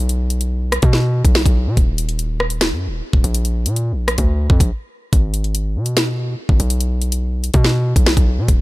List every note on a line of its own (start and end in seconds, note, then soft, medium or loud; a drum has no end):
0.00 0.79 B1 loud
0.09 closed hi-hat medium
0.30 closed hi-hat medium
0.41 closed hi-hat medium
0.72 cross-stick loud
0.72 closed hi-hat medium
0.82 1.23 B2 loud
0.82 kick loud
0.82 closed hi-hat medium
0.93 snare medium
1.25 1.45 B1 loud
1.25 kick medium
1.25 closed hi-hat medium
1.35 snare loud
1.46 1.68 B1 loud
1.46 kick loud
1.46 closed hi-hat medium
1.67 1.77 B2 loud
1.77 2.73 D#1 loud
1.77 kick loud
1.77 closed hi-hat medium
1.98 closed hi-hat medium
2.09 closed hi-hat soft
2.19 closed hi-hat medium
2.40 cross-stick loud
2.50 closed hi-hat medium
2.61 snare loud
2.61 closed hi-hat medium
2.72 2.89 F#2 loud
2.87 3.02 D#1 loud
3.13 3.24 D#1 loud
3.13 kick loud
3.24 3.67 A#1 loud
3.24 closed hi-hat medium
3.35 closed hi-hat medium
3.45 closed hi-hat medium
3.66 3.94 A#2 loud
3.66 closed hi-hat medium
3.76 closed hi-hat medium
3.92 4.17 A#1 loud
4.08 cross-stick loud
4.08 closed hi-hat medium
4.18 4.49 D2 loud
4.18 kick medium
4.18 closed hi-hat medium
4.50 4.60 F2 loud
4.50 kick loud
4.60 4.71 A#1 loud
4.60 kick medium
4.60 closed hi-hat medium
5.13 5.77 G#1 loud
5.13 kick loud
5.13 closed hi-hat medium
5.34 closed hi-hat medium
5.44 closed hi-hat soft
5.55 closed hi-hat medium
5.76 6.36 B2 medium
5.86 closed hi-hat medium
5.97 snare loud
5.97 closed hi-hat medium
6.49 6.59 G#1 loud
6.49 kick loud
6.60 7.50 B1 loud
6.60 closed hi-hat medium
6.70 closed hi-hat medium
6.81 closed hi-hat medium
7.02 closed hi-hat medium
7.12 closed hi-hat medium
7.44 closed hi-hat medium
7.54 7.94 B2 loud
7.54 kick loud
7.54 closed hi-hat medium
7.64 snare medium
7.96 8.16 B1 loud
7.96 kick medium
7.96 closed hi-hat medium
8.06 snare loud
8.17 8.40 B1 loud
8.17 kick loud
8.17 closed hi-hat medium
8.38 8.48 B2 medium
8.48 8.61 D#1 loud
8.48 kick loud
8.48 closed hi-hat medium